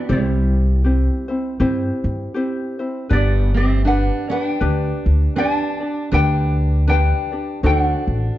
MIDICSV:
0, 0, Header, 1, 5, 480
1, 0, Start_track
1, 0, Key_signature, 1, "major"
1, 0, Tempo, 754907
1, 57, Time_signature, 4, 2, 24, 8
1, 5330, End_track
2, 0, Start_track
2, 0, Title_t, "Ukulele"
2, 0, Program_c, 0, 24
2, 0, Note_on_c, 0, 74, 72
2, 72, Note_off_c, 0, 74, 0
2, 78, Note_on_c, 0, 72, 74
2, 81, Note_on_c, 0, 64, 49
2, 522, Note_off_c, 0, 64, 0
2, 522, Note_off_c, 0, 72, 0
2, 1989, Note_on_c, 0, 74, 89
2, 1996, Note_on_c, 0, 67, 67
2, 2249, Note_off_c, 0, 67, 0
2, 2267, Note_off_c, 0, 74, 0
2, 2269, Note_on_c, 0, 76, 83
2, 2274, Note_on_c, 0, 67, 67
2, 2451, Note_off_c, 0, 67, 0
2, 2463, Note_on_c, 0, 78, 96
2, 2468, Note_off_c, 0, 76, 0
2, 2470, Note_on_c, 0, 71, 68
2, 2726, Note_off_c, 0, 71, 0
2, 2740, Note_off_c, 0, 78, 0
2, 2743, Note_on_c, 0, 79, 96
2, 2748, Note_on_c, 0, 71, 72
2, 3396, Note_off_c, 0, 71, 0
2, 3420, Note_off_c, 0, 79, 0
2, 3423, Note_on_c, 0, 81, 97
2, 3428, Note_on_c, 0, 74, 75
2, 3877, Note_off_c, 0, 74, 0
2, 3904, Note_on_c, 0, 79, 95
2, 3910, Note_on_c, 0, 71, 74
2, 3914, Note_off_c, 0, 81, 0
2, 4358, Note_off_c, 0, 71, 0
2, 4377, Note_off_c, 0, 79, 0
2, 4383, Note_on_c, 0, 79, 88
2, 4388, Note_on_c, 0, 71, 64
2, 4836, Note_off_c, 0, 71, 0
2, 4868, Note_off_c, 0, 79, 0
2, 4871, Note_on_c, 0, 79, 84
2, 4873, Note_on_c, 0, 69, 64
2, 4941, Note_off_c, 0, 79, 0
2, 4941, Note_on_c, 0, 78, 84
2, 5319, Note_off_c, 0, 69, 0
2, 5330, Note_off_c, 0, 78, 0
2, 5330, End_track
3, 0, Start_track
3, 0, Title_t, "Ukulele"
3, 0, Program_c, 1, 24
3, 56, Note_on_c, 1, 67, 72
3, 60, Note_on_c, 1, 60, 74
3, 60, Note_on_c, 1, 64, 74
3, 65, Note_on_c, 1, 72, 79
3, 533, Note_off_c, 1, 60, 0
3, 533, Note_off_c, 1, 67, 0
3, 536, Note_off_c, 1, 64, 0
3, 536, Note_on_c, 1, 67, 57
3, 540, Note_on_c, 1, 60, 59
3, 541, Note_off_c, 1, 72, 0
3, 544, Note_on_c, 1, 64, 64
3, 547, Note_on_c, 1, 72, 60
3, 807, Note_off_c, 1, 72, 0
3, 815, Note_off_c, 1, 64, 0
3, 815, Note_on_c, 1, 72, 54
3, 818, Note_off_c, 1, 67, 0
3, 820, Note_off_c, 1, 60, 0
3, 822, Note_on_c, 1, 64, 49
3, 831, Note_on_c, 1, 60, 44
3, 1011, Note_off_c, 1, 60, 0
3, 1012, Note_off_c, 1, 64, 0
3, 1015, Note_off_c, 1, 72, 0
3, 1015, Note_on_c, 1, 67, 80
3, 1019, Note_on_c, 1, 60, 85
3, 1019, Note_on_c, 1, 64, 86
3, 1023, Note_on_c, 1, 72, 86
3, 1488, Note_off_c, 1, 60, 0
3, 1488, Note_off_c, 1, 67, 0
3, 1490, Note_on_c, 1, 67, 65
3, 1492, Note_off_c, 1, 64, 0
3, 1495, Note_off_c, 1, 72, 0
3, 1496, Note_on_c, 1, 60, 67
3, 1500, Note_on_c, 1, 64, 71
3, 1502, Note_on_c, 1, 72, 65
3, 1767, Note_off_c, 1, 72, 0
3, 1772, Note_off_c, 1, 64, 0
3, 1775, Note_off_c, 1, 67, 0
3, 1775, Note_on_c, 1, 72, 57
3, 1778, Note_off_c, 1, 60, 0
3, 1780, Note_on_c, 1, 64, 52
3, 1787, Note_on_c, 1, 60, 44
3, 1967, Note_on_c, 1, 71, 69
3, 1969, Note_off_c, 1, 60, 0
3, 1971, Note_off_c, 1, 72, 0
3, 1971, Note_on_c, 1, 62, 69
3, 1972, Note_off_c, 1, 64, 0
3, 1974, Note_on_c, 1, 74, 79
3, 1975, Note_on_c, 1, 67, 77
3, 2446, Note_off_c, 1, 71, 0
3, 2449, Note_on_c, 1, 71, 56
3, 2451, Note_off_c, 1, 62, 0
3, 2453, Note_on_c, 1, 62, 63
3, 2454, Note_off_c, 1, 67, 0
3, 2457, Note_off_c, 1, 74, 0
3, 2457, Note_on_c, 1, 67, 64
3, 2460, Note_on_c, 1, 74, 69
3, 2718, Note_off_c, 1, 74, 0
3, 2726, Note_on_c, 1, 74, 46
3, 2727, Note_off_c, 1, 67, 0
3, 2731, Note_off_c, 1, 62, 0
3, 2734, Note_on_c, 1, 67, 44
3, 2735, Note_off_c, 1, 71, 0
3, 2739, Note_on_c, 1, 62, 38
3, 2923, Note_off_c, 1, 62, 0
3, 2926, Note_off_c, 1, 67, 0
3, 2928, Note_on_c, 1, 71, 69
3, 2929, Note_off_c, 1, 74, 0
3, 2931, Note_on_c, 1, 62, 71
3, 2934, Note_on_c, 1, 67, 79
3, 2936, Note_on_c, 1, 74, 79
3, 3403, Note_off_c, 1, 71, 0
3, 3406, Note_on_c, 1, 71, 57
3, 3407, Note_off_c, 1, 62, 0
3, 3410, Note_on_c, 1, 62, 64
3, 3413, Note_off_c, 1, 67, 0
3, 3414, Note_off_c, 1, 74, 0
3, 3415, Note_on_c, 1, 67, 66
3, 3417, Note_on_c, 1, 74, 65
3, 3682, Note_off_c, 1, 74, 0
3, 3690, Note_on_c, 1, 74, 49
3, 3692, Note_off_c, 1, 67, 0
3, 3693, Note_off_c, 1, 71, 0
3, 3695, Note_off_c, 1, 62, 0
3, 3699, Note_on_c, 1, 67, 44
3, 3703, Note_on_c, 1, 62, 42
3, 3885, Note_off_c, 1, 62, 0
3, 3889, Note_off_c, 1, 67, 0
3, 3890, Note_on_c, 1, 71, 67
3, 3893, Note_off_c, 1, 74, 0
3, 3893, Note_on_c, 1, 62, 76
3, 3896, Note_on_c, 1, 67, 77
3, 3900, Note_on_c, 1, 74, 86
3, 4363, Note_off_c, 1, 71, 0
3, 4370, Note_on_c, 1, 71, 56
3, 4371, Note_off_c, 1, 67, 0
3, 4372, Note_off_c, 1, 62, 0
3, 4374, Note_on_c, 1, 62, 61
3, 4379, Note_off_c, 1, 74, 0
3, 4379, Note_on_c, 1, 67, 63
3, 4382, Note_on_c, 1, 74, 58
3, 4645, Note_off_c, 1, 74, 0
3, 4651, Note_off_c, 1, 67, 0
3, 4653, Note_on_c, 1, 74, 44
3, 4656, Note_off_c, 1, 71, 0
3, 4658, Note_off_c, 1, 62, 0
3, 4659, Note_on_c, 1, 67, 43
3, 4664, Note_on_c, 1, 62, 41
3, 4848, Note_off_c, 1, 62, 0
3, 4851, Note_off_c, 1, 74, 0
3, 4853, Note_on_c, 1, 72, 71
3, 4854, Note_off_c, 1, 67, 0
3, 4856, Note_on_c, 1, 62, 73
3, 4857, Note_on_c, 1, 66, 82
3, 4860, Note_on_c, 1, 69, 78
3, 5327, Note_off_c, 1, 72, 0
3, 5330, Note_off_c, 1, 62, 0
3, 5330, Note_off_c, 1, 66, 0
3, 5330, Note_off_c, 1, 69, 0
3, 5330, End_track
4, 0, Start_track
4, 0, Title_t, "Steel-string acoustic guitar"
4, 0, Program_c, 2, 25
4, 57, Note_on_c, 2, 55, 58
4, 511, Note_off_c, 2, 55, 0
4, 1973, Note_on_c, 2, 59, 70
4, 2237, Note_off_c, 2, 59, 0
4, 2253, Note_on_c, 2, 60, 73
4, 2440, Note_off_c, 2, 60, 0
4, 2447, Note_on_c, 2, 62, 74
4, 2714, Note_off_c, 2, 62, 0
4, 2732, Note_on_c, 2, 62, 80
4, 3388, Note_off_c, 2, 62, 0
4, 3409, Note_on_c, 2, 62, 83
4, 3868, Note_off_c, 2, 62, 0
4, 3889, Note_on_c, 2, 62, 79
4, 4348, Note_off_c, 2, 62, 0
4, 4372, Note_on_c, 2, 62, 72
4, 4829, Note_off_c, 2, 62, 0
4, 4859, Note_on_c, 2, 62, 80
4, 5313, Note_off_c, 2, 62, 0
4, 5330, End_track
5, 0, Start_track
5, 0, Title_t, "Upright bass"
5, 0, Program_c, 3, 32
5, 60, Note_on_c, 3, 36, 97
5, 683, Note_off_c, 3, 36, 0
5, 1017, Note_on_c, 3, 43, 91
5, 1200, Note_off_c, 3, 43, 0
5, 1298, Note_on_c, 3, 43, 81
5, 1427, Note_off_c, 3, 43, 0
5, 1975, Note_on_c, 3, 31, 98
5, 2600, Note_off_c, 3, 31, 0
5, 2932, Note_on_c, 3, 38, 88
5, 3117, Note_off_c, 3, 38, 0
5, 3216, Note_on_c, 3, 38, 79
5, 3346, Note_off_c, 3, 38, 0
5, 3893, Note_on_c, 3, 38, 99
5, 4519, Note_off_c, 3, 38, 0
5, 4853, Note_on_c, 3, 38, 87
5, 5038, Note_off_c, 3, 38, 0
5, 5134, Note_on_c, 3, 33, 79
5, 5264, Note_off_c, 3, 33, 0
5, 5330, End_track
0, 0, End_of_file